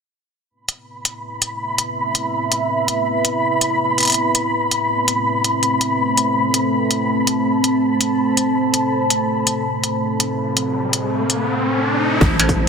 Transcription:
0.50 12.17 A3 medium
0.50 12.17 C4 medium
0.50 6.32 B4 medium
0.50 6.34 E5 medium
0.50 11.48 B5 medium
0.69 closed hi-hat medium
1.05 closed hi-hat medium
1.42 closed hi-hat medium
1.78 closed hi-hat medium
2.15 closed hi-hat medium
2.52 closed hi-hat medium
2.88 closed hi-hat medium
3.25 closed hi-hat medium
3.61 closed hi-hat medium
3.98 closed hi-hat soft
4.00 closed hi-hat soft
4.03 closed hi-hat soft
4.05 closed hi-hat soft
4.08 closed hi-hat soft
4.10 closed hi-hat soft
4.12 closed hi-hat soft
4.14 closed hi-hat medium
4.35 closed hi-hat medium
4.71 closed hi-hat medium
5.08 closed hi-hat medium
5.44 closed hi-hat medium
5.63 closed hi-hat soft
5.81 closed hi-hat medium
6.17 closed hi-hat medium
6.36 12.17 C5 medium
6.36 12.19 A5 medium
6.54 closed hi-hat medium
6.91 closed hi-hat medium
7.27 closed hi-hat medium
7.64 closed hi-hat medium
8.01 closed hi-hat medium
8.37 closed hi-hat medium
8.74 closed hi-hat medium
9.10 closed hi-hat medium
9.29 riser medium
9.47 closed hi-hat medium
9.84 closed hi-hat medium
10.20 closed hi-hat medium
10.57 closed hi-hat medium
10.93 closed hi-hat medium
11.30 closed hi-hat medium
12.21 12.69 A1 loud
12.21 kick loud
12.21 impact medium
12.40 closed hi-hat medium
12.40 struck metal medium
12.49 kick loud
12.49 open hi-hat soft

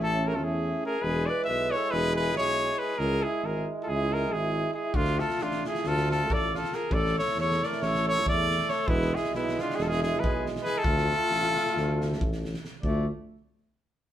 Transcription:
0.00 0.42 A1 loud
0.00 0.98 A3 medium
0.00 1.00 C#4 loud
0.00 0.26 E4 medium
0.00 0.29 A4 loud
0.24 0.35 G#4 medium
0.24 0.37 A#4 loud
0.33 0.46 F4 medium
0.33 0.46 A4 medium
0.41 0.74 E2 loud
0.41 0.85 E4 medium
0.41 0.85 G#4 loud
0.86 1.06 G#4 medium
0.86 1.04 A#4 loud
1.00 1.27 E1 loud
1.00 2.93 G#3 medium
1.00 2.94 E4 medium
1.00 1.28 B4 loud
1.06 1.31 G#4 medium
1.26 1.48 B4 medium
1.26 1.44 D5 loud
1.44 1.72 B1 loud
1.44 1.73 E5 loud
1.49 1.78 B4 medium
1.71 1.93 C#5 loud
1.76 1.96 A4 medium
1.91 2.39 E1 loud
1.91 2.19 G#4 loud
1.91 2.16 B4 loud
2.16 2.37 G#4 medium
2.16 2.35 B4 loud
2.38 2.71 B1 loud
2.38 2.79 G#4 medium
2.38 2.80 C#5 loud
2.79 2.99 G#4 medium
2.79 3.00 B4 loud
2.97 3.23 C#2 loud
2.97 4.97 G#3 medium
2.97 4.93 E4 medium
2.97 3.26 G#4 medium
2.97 3.24 A#4 loud
3.23 3.47 E4 medium
3.23 3.47 G#4 medium
3.42 3.67 G#1 loud
3.42 3.70 G#4 medium
3.42 3.70 A#4 medium
3.83 3.91 F4 medium
3.83 3.88 A4 medium
3.87 4.35 C#2 loud
3.87 4.14 E4 medium
3.87 4.15 G#4 loud
4.12 4.37 G#4 medium
4.12 4.34 A#4 loud
4.32 4.67 G#1 loud
4.32 4.76 E4 medium
4.32 4.73 G#4 loud
4.74 4.96 E4 medium
4.74 4.97 G#4 loud
4.92 5.20 D2 loud
4.92 6.74 A3 medium
4.92 5.21 D4 medium
4.92 6.92 F4 medium
4.92 5.21 F4 loud
4.92 kick medium
5.05 snare soft
5.19 5.43 F4 medium
5.19 5.44 A4 loud
5.19 snare soft
5.29 snare soft
5.38 5.66 A1 medium
5.38 5.66 D4 medium
5.38 snare soft
5.43 5.66 F4 loud
5.51 snare soft
5.65 5.89 G#4 medium
5.65 snare soft
5.69 5.89 E4 medium
5.74 snare soft
5.84 6.32 D2 loud
5.84 6.11 F4 medium
5.84 6.11 A4 loud
5.84 snare soft
5.97 snare soft
6.11 6.35 A4 loud
6.11 snare soft
6.15 6.33 F4 medium
6.30 6.64 A1 loud
6.30 6.54 A4 loud
6.30 6.55 D5 loud
6.30 kick medium
6.55 6.76 F4 medium
6.55 6.76 A4 medium
6.55 snare soft
6.63 snare soft
6.72 6.96 G#4 medium
6.72 6.94 A#4 loud
6.72 snare soft
6.90 7.15 A1 loud
6.90 8.89 A3 medium
6.90 8.71 E4 medium
6.90 7.17 D5 loud
6.90 kick medium
6.95 7.18 A4 loud
7.06 snare soft
7.18 7.37 A4 medium
7.18 7.36 C#5 loud
7.18 snare soft
7.28 snare soft
7.35 7.61 E2 loud
7.35 snare soft
7.41 7.68 A4 medium
7.41 7.66 C#5 loud
7.51 snare soft
7.63 7.87 A#4 medium
7.63 7.84 D5 medium
7.63 snare soft
7.72 snare soft
7.82 8.29 A1 loud
7.82 8.09 A4 medium
7.82 8.07 C#5 loud
7.82 snare soft
7.94 snare soft
8.08 8.28 A4 medium
8.08 8.26 C#5 loud
8.26 8.61 E2 loud
8.26 8.70 A4 medium
8.26 8.71 D5 loud
8.26 kick medium
8.51 snare soft
8.59 snare soft
8.68 8.90 A4 loud
8.68 8.89 C#5 loud
8.68 snare soft
8.87 9.13 E1 loud
8.87 10.87 G#3 loud
8.87 9.15 B3 loud
8.87 10.87 E4 medium
8.87 9.16 E4 loud
8.87 kick loud
9.01 snare soft
9.14 9.34 E4 medium
9.14 9.35 G#4 loud
9.14 snare soft
9.24 snare soft
9.31 9.57 B1 loud
9.31 9.62 E4 loud
9.31 snare soft
9.36 9.63 B3 medium
9.48 snare soft
9.58 9.83 D4 medium
9.58 9.77 F4 medium
9.58 snare soft
9.70 snare soft
9.76 10.24 E1 loud
9.76 9.84 G#4 loud
9.76 snare soft
9.81 9.87 E4 medium
9.81 9.90 A4 medium
9.85 9.94 F4 medium
9.85 10.02 G#4 loud
9.92 10.03 E4 medium
9.92 snare soft
10.03 10.26 E4 medium
10.03 10.21 G#4 loud
10.03 snare soft
10.19 10.57 B1 loud
10.19 10.45 B4 loud
10.24 10.48 G#4 medium
10.24 kick medium
10.46 snare soft
10.55 snare soft
10.62 10.85 G#4 medium
10.62 10.80 B4 loud
10.62 snare soft
10.78 12.42 A4 loud
10.84 11.11 D2 loud
10.84 12.68 A3 medium
10.84 12.45 F4 medium
10.84 12.68 F4 medium
10.84 kick loud
10.97 snare soft
11.11 snare soft
11.30 11.56 A1 loud
11.30 snare soft
11.42 snare soft
11.56 snare soft
11.66 snare soft
11.75 12.22 D2 loud
11.75 snare soft
12.01 snare soft
12.12 snare soft
12.21 12.55 A1 loud
12.21 kick loud
12.32 snare soft
12.45 snare soft
12.54 snare soft
12.65 snare soft
12.83 13.07 D2 loud
12.83 13.07 A3 medium
12.83 13.08 A3 medium
12.83 13.08 F4 medium
12.83 13.07 D5 medium
12.83 kick medium

